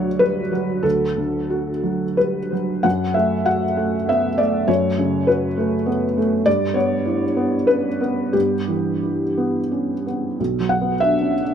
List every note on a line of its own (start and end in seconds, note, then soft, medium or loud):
0.00 0.80 D2 soft
0.00 0.52 F#3 soft
0.00 0.86 F#4 soft
0.00 0.20 C#5 medium
0.00 0.86 D5 medium
0.19 0.52 G3 soft
0.19 0.84 B4 medium
0.52 1.04 F#3 soft
0.83 2.80 D2 soft
0.83 2.18 A4 medium
1.17 1.70 D3 soft
1.50 2.04 F#4 soft
1.83 2.38 F#3 soft
2.17 2.53 G3 soft
2.17 2.84 B4 medium
2.53 2.85 F#3 soft
2.83 4.64 F#2 soft
2.83 3.15 F#5 medium
3.14 3.65 A3 soft
3.14 3.46 E5 medium
3.46 3.95 F#4 soft
3.46 4.08 F#5 medium
3.77 4.26 A3 soft
4.09 4.39 B3 soft
4.09 4.39 E5 medium
4.38 4.86 A3 soft
4.38 4.68 D5 medium
4.68 6.42 F#2 soft
4.68 5.27 C#5 medium
4.98 5.46 C#3 soft
5.27 5.75 F#4 soft
5.27 5.87 B4 medium
5.57 6.05 A3 soft
5.86 6.16 B3 soft
6.18 6.47 A3 soft
6.46 8.30 G2 medium
6.46 6.75 D5 medium
6.74 7.23 B3 soft
6.74 7.67 C#5 medium
7.05 7.55 E4 soft
7.36 7.87 B3 soft
7.67 8.01 C#4 soft
7.67 8.34 B4 medium
8.01 8.55 B3 soft
8.33 10.35 G2 soft
8.33 10.05 G4 medium
8.68 9.24 E3 soft
9.03 9.58 E4 soft
9.37 9.92 B3 soft
9.72 10.06 C#4 soft
10.07 10.39 B3 soft
10.40 11.54 B1 soft
10.60 10.93 F#3 soft
10.69 11.01 F#5 medium
10.81 11.14 B3 soft
11.00 11.34 D4 soft
11.00 11.54 E5 medium
11.21 11.42 C#4 soft
11.42 11.54 D4 soft